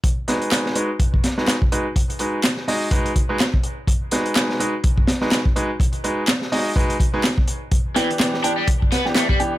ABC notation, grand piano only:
X:1
M:4/4
L:1/16
Q:"Swing 16ths" 1/4=125
K:G#m
V:1 name="Grand piano"
z2 [G,DFB]4 [G,DFB] z4 [G,DFB] z2 [G,DFB] z | z2 [G,DFB] z3 [G,DFd] z [G,DFB] z2 [G,DFB] z4 | z2 [G,DFB]4 [G,DFB] z4 [G,DFB] z2 [G,DFB] z | z2 [G,DFB] z3 [G,DFd] z [G,DFB] z2 [G,DFB] z4 |
z2 [E,B,=D=G]4 [E,B,DG] z4 [E,B,DG] z2 [E,B,DG] z |]